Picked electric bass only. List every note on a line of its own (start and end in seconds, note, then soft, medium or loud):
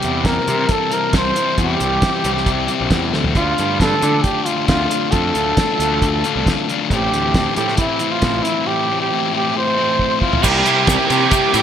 0.04 0.38 E2 medium
0.48 0.65 C3 medium
1.14 1.31 C2 medium
1.58 1.75 E2 medium
1.81 1.97 C2 medium
2.25 2.67 C2 medium
2.81 2.89 A#1 medium
2.91 3.11 E2 medium
3.14 3.34 D2 medium
3.36 3.53 D2 loud
3.59 3.93 G2 medium
4.03 4.19 D3 medium
4.69 4.86 D2 medium
5.13 5.30 F2 medium
5.36 5.52 D2 medium
5.80 6.22 D2 medium
6.36 6.52 C2 medium
6.91 7.07 A1 loud
7.12 7.46 D2 medium
7.57 7.74 A2 medium
8.23 8.40 A1 medium
10.44 10.61 C2 loud
10.88 10.96 C2 loud
11.10 11.27 C3 medium
11.54 11.62 A2 medium